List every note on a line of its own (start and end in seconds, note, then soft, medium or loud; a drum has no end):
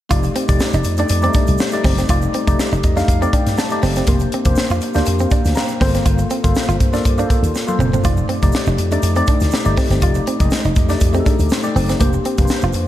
0.09 0.28 F1 loud
0.09 0.45 A3 medium
0.09 0.45 D#4 medium
0.09 0.19 F4 medium
0.09 0.45 G4 medium
0.09 0.46 D5 medium
0.09 kick loud
0.09 closed hi-hat medium
0.09 shaker medium
0.23 muted clean electric guitar stroke soft
0.23 closed hi-hat soft
0.23 shaker soft
0.36 0.44 C4 medium
0.36 closed hi-hat medium
0.47 0.57 F1 medium
0.47 0.93 A3 medium
0.47 0.94 D#4 medium
0.47 0.94 G4 medium
0.47 0.94 D5 medium
0.47 kick loud
0.47 closed hi-hat medium
0.47 shaker soft
0.59 snare loud
0.59 shaker medium
0.73 0.82 F1 loud
0.73 0.81 D#4 medium
0.73 closed hi-hat soft
0.73 shaker soft
0.84 1.03 F2 medium
0.84 muted clean electric guitar stroke soft
0.84 closed hi-hat medium
0.84 shaker soft
0.97 1.21 A3 medium
0.97 1.07 D4 medium
0.97 1.21 D#4 medium
0.97 1.21 G4 medium
0.97 1.21 D5 loud
0.97 closed hi-hat soft
0.97 shaker soft
1.08 1.27 F2 loud
1.08 muted clean electric guitar stroke soft
1.08 closed hi-hat medium
1.08 shaker medium
1.22 1.28 G3 medium
1.22 1.31 C4 medium
1.22 1.68 D#4 medium
1.22 1.68 G4 medium
1.22 1.68 D5 medium
1.22 closed hi-hat soft
1.22 shaker soft
1.28 1.71 A3 medium
1.33 1.44 D4 medium
1.33 kick loud
1.33 closed hi-hat medium
1.33 shaker soft
1.47 1.56 C2 medium
1.47 closed hi-hat medium
1.47 shaker soft
1.58 muted clean electric guitar stroke soft
1.58 snare loud
1.58 shaker medium
1.71 2.06 A3 medium
1.71 2.06 D#4 medium
1.71 2.06 G4 medium
1.71 2.07 D5 medium
1.71 closed hi-hat soft
1.71 shaker medium
1.84 2.02 F#1 medium
1.84 1.93 C4 medium
1.84 kick medium
1.84 snare soft
1.84 open hi-hat medium
1.84 shaker soft
1.98 2.06 C4 medium
1.98 snare soft
1.98 closed hi-hat soft
1.98 shaker soft
2.09 2.27 F1 loud
2.09 2.44 A3 medium
2.09 2.44 D#4 medium
2.09 2.18 F4 medium
2.09 2.44 G4 medium
2.09 2.45 D5 medium
2.09 kick loud
2.09 closed hi-hat medium
2.09 shaker medium
2.22 muted clean electric guitar stroke soft
2.22 shaker soft
2.34 2.43 C4 medium
2.34 closed hi-hat medium
2.47 2.55 F1 medium
2.47 2.93 A3 medium
2.47 2.93 D#4 medium
2.47 2.93 G4 medium
2.47 2.93 D5 medium
2.47 kick medium
2.47 closed hi-hat medium
2.47 shaker soft
2.59 snare loud
2.59 shaker medium
2.72 2.80 F1 medium
2.72 2.80 D#4 medium
2.72 closed hi-hat soft
2.72 shaker soft
2.83 3.01 F2 medium
2.83 3.07 D#5 medium
2.83 muted clean electric guitar stroke soft
2.83 kick medium
2.83 closed hi-hat medium
2.83 shaker soft
2.96 3.19 A3 medium
2.96 3.04 D4 medium
2.96 3.19 D#4 medium
2.96 3.19 G4 medium
2.96 3.07 F5 medium
2.96 snare soft
2.96 closed hi-hat soft
2.96 shaker soft
3.08 3.26 F2 loud
3.08 3.32 F5 medium
3.08 muted clean electric guitar stroke soft
3.08 kick medium
3.08 closed hi-hat loud
3.08 shaker medium
3.21 3.67 A3 medium
3.21 3.29 C4 medium
3.21 3.67 D#4 medium
3.21 3.67 G4 medium
3.21 3.67 D5 loud
3.21 closed hi-hat soft
3.21 shaker soft
3.33 3.42 D4 medium
3.33 3.56 G5 medium
3.33 kick loud
3.33 closed hi-hat medium
3.33 shaker soft
3.47 3.55 G2 medium
3.47 snare soft
3.47 closed hi-hat medium
3.47 shaker soft
3.57 4.04 A5 medium
3.57 muted clean electric guitar stroke soft
3.57 snare loud
3.57 shaker medium
3.70 4.04 A3 medium
3.70 4.05 D#4 medium
3.70 4.05 G4 medium
3.70 4.05 D5 medium
3.70 closed hi-hat soft
3.70 shaker soft
3.82 4.00 F#1 medium
3.82 3.91 C4 medium
3.82 snare soft
3.82 open hi-hat medium
3.82 shaker soft
3.95 4.04 C4 medium
3.95 snare soft
3.95 closed hi-hat medium
3.95 shaker soft
4.07 4.25 F1 medium
4.07 4.43 A#3 medium
4.07 4.16 A#3 medium
4.07 4.43 D4 medium
4.07 4.43 G4 medium
4.07 4.43 C5 medium
4.07 kick loud
4.07 closed hi-hat medium
4.07 shaker medium
4.19 muted clean electric guitar stroke soft
4.19 closed hi-hat soft
4.19 shaker soft
4.32 4.42 C4 medium
4.32 closed hi-hat medium
4.45 4.54 F1 medium
4.45 4.91 A#3 medium
4.45 4.91 D4 medium
4.45 4.91 G4 medium
4.45 4.91 C5 medium
4.45 kick medium
4.45 closed hi-hat medium
4.45 shaker soft
4.56 muted slap bass stroke soft
4.56 snare loud
4.56 shaker medium
4.70 4.78 F2 loud
4.70 4.78 F4 medium
4.70 closed hi-hat soft
4.70 shaker soft
4.81 muted clean electric guitar stroke soft
4.81 closed hi-hat medium
4.81 shaker soft
4.94 5.03 D2 medium
4.94 5.17 A#3 medium
4.94 5.18 D4 medium
4.94 5.03 D4 medium
4.94 5.18 G4 medium
4.94 5.06 C5 medium
4.94 snare soft
4.94 closed hi-hat soft
4.94 shaker soft
5.06 5.25 F2 loud
5.06 5.31 C5 medium
5.06 5.30 F5 medium
5.06 muted clean electric guitar stroke soft
5.06 closed hi-hat loud
5.06 shaker medium
5.19 5.28 C4 medium
5.19 closed hi-hat soft
5.19 shaker soft
5.30 5.41 D4 medium
5.30 5.55 D5 medium
5.30 5.55 G5 medium
5.30 kick medium
5.30 closed hi-hat medium
5.30 shaker soft
5.45 5.53 D2 medium
5.45 snare soft
5.45 closed hi-hat medium
5.45 shaker soft
5.55 6.04 F5 medium
5.55 6.03 A#5 medium
5.55 muted clean electric guitar stroke soft
5.55 snare loud
5.55 shaker medium
5.68 closed hi-hat soft
5.68 shaker soft
5.81 5.98 G1 medium
5.81 6.38 A#3 medium
5.81 5.90 C4 medium
5.81 6.38 F4 medium
5.81 6.39 A4 medium
5.81 6.39 C5 medium
5.81 kick medium
5.81 snare soft
5.81 open hi-hat medium
5.81 shaker soft
5.94 6.02 C4 medium
5.94 snare soft
5.94 closed hi-hat medium
5.94 shaker soft
6.05 6.23 G1 loud
6.05 6.14 F4 medium
6.05 kick loud
6.05 closed hi-hat medium
6.05 shaker medium
6.18 muted clean electric guitar stroke soft
6.18 closed hi-hat soft
6.18 shaker soft
6.30 6.39 C4 medium
6.30 closed hi-hat medium
6.30 shaker soft
6.43 6.52 G1 medium
6.43 6.89 A#3 medium
6.43 6.89 F4 medium
6.43 6.89 A4 medium
6.43 6.89 C5 medium
6.43 kick loud
6.43 closed hi-hat medium
6.43 shaker soft
6.55 snare loud
6.55 shaker medium
6.68 6.77 G1 loud
6.68 6.76 F4 medium
6.68 closed hi-hat soft
6.68 shaker soft
6.80 6.98 G2 medium
6.80 muted clean electric guitar stroke soft
6.80 kick medium
6.80 closed hi-hat medium
6.80 shaker soft
6.93 7.16 A#3 medium
6.93 7.01 D4 medium
6.93 7.16 F4 medium
6.93 7.16 A4 medium
6.93 7.17 D5 medium
6.93 snare soft
6.93 closed hi-hat soft
6.93 shaker soft
7.05 7.23 G2 loud
7.05 muted clean electric guitar stroke soft
7.05 kick medium
7.05 closed hi-hat medium
7.05 shaker medium
7.18 7.63 A#3 medium
7.18 7.26 D4 medium
7.18 7.64 F4 medium
7.18 7.64 A4 medium
7.18 7.64 C5 medium
7.18 closed hi-hat soft
7.18 shaker soft
7.30 7.39 A#3 medium
7.30 kick loud
7.30 closed hi-hat medium
7.30 shaker soft
7.42 7.51 D#2 medium
7.42 closed hi-hat medium
7.42 shaker soft
7.55 muted clean electric guitar stroke soft
7.55 snare soft
7.55 shaker medium
7.67 8.01 A#3 medium
7.67 8.01 F4 medium
7.67 8.01 A4 medium
7.67 8.02 C5 medium
7.67 high tom medium
7.67 shaker medium
7.79 7.96 F#1 medium
7.79 7.89 C4 medium
7.79 mid tom medium
7.79 shaker medium
7.93 8.01 C4 medium
7.93 floor tom medium
7.93 shaker soft
8.03 8.22 F1 loud
8.03 8.38 A3 medium
8.03 8.39 D#4 medium
8.03 8.13 F4 medium
8.03 8.39 G4 medium
8.03 8.39 D5 medium
8.03 kick loud
8.03 closed hi-hat medium
8.03 shaker medium
8.17 muted clean electric guitar stroke soft
8.17 shaker soft
8.29 8.38 C4 medium
8.29 closed hi-hat medium
8.42 8.51 F1 medium
8.42 8.87 A3 medium
8.42 8.87 D#4 medium
8.42 8.88 G4 medium
8.42 8.88 D5 medium
8.42 kick medium
8.42 closed hi-hat medium
8.42 shaker soft
8.52 snare loud
8.52 shaker medium
8.66 8.75 F1 loud
8.66 8.75 D#4 medium
8.66 shaker soft
8.78 8.96 F2 medium
8.78 muted clean electric guitar stroke soft
8.78 closed hi-hat medium
8.78 shaker soft
8.91 9.14 A3 medium
8.91 9.00 D4 medium
8.91 9.14 D#4 medium
8.91 9.15 G4 medium
8.91 9.15 D5 medium
8.91 closed hi-hat soft
8.91 shaker soft
9.02 9.20 F2 medium
9.02 muted clean electric guitar stroke soft
9.02 closed hi-hat loud
9.02 shaker medium
9.15 9.61 A3 medium
9.15 9.24 C4 medium
9.15 9.61 D#4 medium
9.15 9.62 G4 medium
9.15 9.62 D5 medium
9.15 closed hi-hat soft
9.15 shaker soft
9.27 9.37 D4 medium
9.27 kick loud
9.27 closed hi-hat medium
9.27 shaker soft
9.40 9.49 D2 medium
9.40 snare soft
9.40 closed hi-hat medium
9.40 shaker soft
9.51 muted clean electric guitar stroke soft
9.51 snare loud
9.51 shaker medium
9.65 9.74 G1 medium
9.65 9.99 A3 medium
9.65 9.99 D#4 medium
9.65 9.99 G4 medium
9.65 9.99 D5 medium
9.65 closed hi-hat soft
9.65 shaker medium
9.77 9.86 C4 medium
9.77 kick medium
9.77 snare soft
9.77 open hi-hat medium
9.77 shaker soft
9.90 9.98 G1 medium
9.90 9.98 C4 medium
9.90 snare soft
9.90 closed hi-hat soft
9.90 shaker soft
10.01 10.20 F1 loud
10.01 10.37 A3 medium
10.01 10.37 D#4 medium
10.01 10.11 F4 medium
10.01 10.37 G4 medium
10.01 10.37 D5 medium
10.01 kick loud
10.01 closed hi-hat medium
10.01 shaker medium
10.14 muted clean electric guitar stroke soft
10.14 closed hi-hat soft
10.14 shaker soft
10.27 10.36 C4 medium
10.27 closed hi-hat medium
10.39 10.48 F1 medium
10.39 10.45 G#3 medium
10.39 10.85 D#4 medium
10.39 10.85 G4 medium
10.39 10.86 D#5 medium
10.39 kick medium
10.39 closed hi-hat medium
10.39 shaker soft
10.45 10.87 A3 medium
10.50 snare loud
10.50 shaker medium
10.64 10.73 F1 loud
10.64 10.73 D#4 medium
10.64 closed hi-hat soft
10.64 shaker soft
10.75 10.94 F2 medium
10.75 muted clean electric guitar stroke soft
10.75 kick medium
10.75 closed hi-hat medium
10.75 shaker soft
10.89 11.12 A3 medium
10.89 10.97 D4 medium
10.89 11.12 D#4 medium
10.89 11.12 G4 medium
10.89 11.12 D5 medium
10.89 snare soft
10.89 closed hi-hat soft
10.89 shaker soft
11.00 11.19 F2 loud
11.00 muted clean electric guitar stroke soft
11.00 kick medium
11.00 closed hi-hat loud
11.00 shaker medium
11.13 11.59 A3 medium
11.13 11.22 C4 medium
11.13 11.59 D#4 medium
11.13 11.59 G4 medium
11.13 11.20 G#4 medium
11.13 closed hi-hat soft
11.13 shaker soft
11.20 11.63 A4 medium
11.26 11.35 D4 medium
11.26 kick loud
11.26 closed hi-hat medium
11.26 shaker soft
11.39 11.47 D2 medium
11.39 closed hi-hat medium
11.39 shaker soft
11.49 muted clean electric guitar stroke soft
11.49 snare loud
11.49 shaker medium
11.63 11.97 A3 medium
11.63 11.97 D#4 medium
11.63 11.97 G4 medium
11.63 11.97 D5 medium
11.63 shaker soft
11.75 11.93 F#1 medium
11.75 11.84 C4 medium
11.75 open hi-hat medium
11.75 shaker medium
11.89 11.97 C4 medium
11.89 snare soft
11.89 closed hi-hat medium
11.89 shaker soft
11.99 12.18 F1 medium
11.99 12.35 A#3 medium
11.99 12.09 A#3 medium
11.99 12.35 D4 medium
11.99 12.35 G4 medium
11.99 12.35 C5 medium
11.99 kick loud
11.99 closed hi-hat medium
11.99 shaker medium
12.13 muted clean electric guitar stroke soft
12.13 shaker soft
12.25 12.34 C4 medium
12.25 closed hi-hat medium
12.38 12.46 F1 medium
12.38 12.83 A#3 medium
12.38 12.84 D4 medium
12.38 12.84 G4 medium
12.38 12.44 B4 medium
12.38 kick loud
12.38 closed hi-hat medium
12.38 shaker soft
12.45 12.86 C5 medium
12.45 shaker medium
12.50 snare loud
12.61 12.71 F1 medium
12.61 12.71 F4 medium
12.61 shaker soft
12.73 12.88 F2 loud
12.73 muted clean electric guitar stroke soft
12.73 closed hi-hat medium
12.73 shaker medium